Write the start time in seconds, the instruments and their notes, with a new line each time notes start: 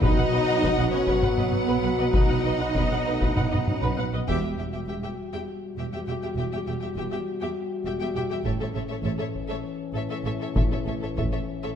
0.02 double bass section B1, trombone section B2 F#3, timpani B2, french horn section B3 F#4, cello section D#4, viola section B4, violin section D#5 F#5, taiko
0.17 double bass section B1, viola section B4 F#5
0.32 double bass section B1, viola section B4 D#5
0.47 double bass section B1, viola section B4 F#5
0.62 double bass section B1, viola section B4, taiko
0.78 double bass section B1, viola section B4 F#5
0.92 double bass section B1, cello section C#4, viola section B4 D#5, violin section C#5
1.07 double bass section B1, viola section B4, taiko
1.22 double bass section B1, cello section B3, viola section B4 F#5, violin section B4, taiko mid
1.38 double bass section B1, viola section B4 D#5, taiko mid
1.53 taiko mid
1.68 double bass section B1, viola section B4
1.83 double bass section B1, viola section B4 F#5
1.98 double bass section B1, viola section B4 D#5
2.13 double bass section B1, cello section D#4, viola section B4, violin section D#5, taiko
2.29 double bass section B1, viola section B4 F#5
2.45 double bass section B1, viola section B4 D#5
2.60 double bass section B1, viola section B4 F#5
2.75 double bass section B1, french horn section B3, viola section B4, taiko
2.91 double bass section B1, viola section B4 F#5
3.06 double bass section B1, french horn section A3, viola section B4 D#5
3.21 double bass section B1, viola section B4, taiko
3.36 double bass section B1, french horn section B3, viola section B4 F#5, taiko mid
3.51 double bass section B1, viola section B4 D#5, taiko mid
3.68 french horn section C#4, taiko mid
3.83 double bass section B1, viola section B4
3.98 double bass section B1, french horn section B3, viola section B4 F#5
4.13 double bass section B1, viola section B4 D#5
4.27 double bass section E1, cello section E2, french horn section G3 F#4, viola section G4, violin section E5 G5, taiko
4.43 cello section E2, viola section G4, violin section E5 G5
4.58 double bass section E1, cello section E2, viola section G4, violin section E5 G5
4.73 cello section E2, viola section G4, violin section E5 G5
4.88 double bass section E1, cello section E2, viola section G4, violin section E5 G5
5.03 cello section E2, viola section G4, violin section E5 G5
5.33 cello section E2, viola section G4, violin section E5 G5
5.77 double bass section E1, cello section E2, viola section G4, violin section E5 G5
5.93 cello section E2, viola section G4, violin section E5 G5
6.08 double bass section E1, cello section E2, viola section G4, violin section E5 G5
6.22 cello section E2, viola section G4, violin section E5 G5
6.37 double bass section E1, cello section E2, viola section G4, violin section E5 G5
6.52 cello section E2, viola section G4, violin section E5 G5
6.67 double bass section E1, cello section E2, viola section G4, violin section E5 G5
6.81 cello section E2, viola section G4, violin section E5 G5
6.96 double bass section E1, cello section E2, viola section G4, violin section E5 G5
7.11 cello section E2, viola section G4, violin section E5 G5
7.41 cello section E2, viola section G4, violin section E5 G5
7.86 double bass section E1, cello section E2, viola section G4, violin section E5 G5
8.00 cello section E2, viola section G4, violin section E5 G5
8.16 double bass section E1, cello section E2, viola section G4, violin section E5 G5
8.30 cello section E2, viola section G4, violin section E5 G5
8.44 double bass section A1, cello section A2, french horn section E3 C#4, viola section A4, violin section C#5 E5, taiko
8.61 cello section A2, viola section A4, violin section C#5 E5
8.75 double bass section A1, cello section A2, viola section A4, violin section C#5 E5
8.88 cello section A2, viola section A4, violin section C#5 E5
9.03 double bass section A1, cello section A2, viola section A4, violin section C#5 E5
9.18 cello section A2, viola section A4, violin section C#5 E5
9.35 taiko
9.49 cello section A2, viola section A4, violin section C#5 E5
9.94 double bass section A1, cello section A2, viola section A4, violin section C#5 E5
10.09 cello section A2, viola section A4, violin section C#5 E5
10.25 double bass section A1, cello section A2, viola section A4, violin section C#5 E5
10.40 cello section A2, viola section A4, violin section C#5 E5
10.55 double bass section A1, viola section A4, violin section C#5 E5, taiko
10.71 cello section A2, viola section A4, violin section C#5 E5
10.86 double bass section A1, cello section A2, viola section A4, violin section C#5 E5
11.01 cello section A2, viola section A4, violin section C#5 E5
11.17 double bass section A1, cello section A2, viola section A4, violin section C#5 E5, taiko
11.32 cello section A2, viola section A4, violin section C#5 E5
11.63 cello section A2, viola section A4, violin section C#5 E5